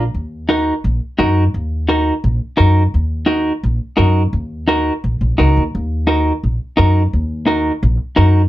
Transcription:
0.14 upright bass D#2
0.49 clean electric guitar D#4 F#4 A#4
0.84 upright bass A#1
1.19 upright bass F#2, clean electric guitar D#4 F#4 A#4
1.54 upright bass D#2
1.89 clean electric guitar D#4 F#4 A#4
2.24 upright bass A#1
2.57 upright bass F#2, clean electric guitar D#4 F#4 A#4
2.94 upright bass D#2
3.26 clean electric guitar D#4 F#4 A#4
3.63 upright bass A#1
3.97 upright bass F#2, clean electric guitar D#4 F#4 A#4
4.33 upright bass D#2
4.68 clean electric guitar D#4 F#4 A#4
5.04 upright bass A#1
5.21 upright bass A#1
5.38 upright bass C#2, clean electric guitar D#4 F#4 A#4
5.57 upright bass D#2
5.75 upright bass D#2
6.07 clean electric guitar D#4 F#4 A#4
6.43 upright bass A#1
6.77 upright bass F#2, clean electric guitar D#4 F#4 A#4
7.13 upright bass D#2
7.47 clean electric guitar D#4 F#4 A#4
7.83 upright bass A#1
8.16 upright bass F#2, clean electric guitar D#4 F#4 A#4

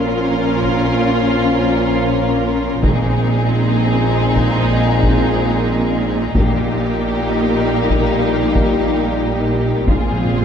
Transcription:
Already playing: double bass section A#1, cello section A#2, trombone section A#2 F3, french horn section A#3 C#4, viola section C#4, violin section F4 A#4
0.63 taiko
2.82 double bass section A#1, trombone section A#2 G#3, cello section A#2, french horn section A#3 C4, viola section C4, violin section D#4 G#4, taiko
4.37 taiko
5.03 taiko
6.34 double bass section A#1, cello section A#2, trombone section A#2 G3, french horn section A#3 D#4, viola section A#3, violin section G4, taiko
6.39 violin section D#4
7.90 taiko
8.55 taiko
9.86 double bass section A#1, trombone section F2 G#3, timpani A#2, cello section A#2, french horn section C4 F4, viola section C4, violin section F4, taiko
9.90 violin section G#4
9.95 timpani A#2
10.04 timpani A#2
10.12 timpani A#2
10.19 timpani A#2
10.25 timpani A#2
10.33 timpani A#2
10.41 timpani A#2

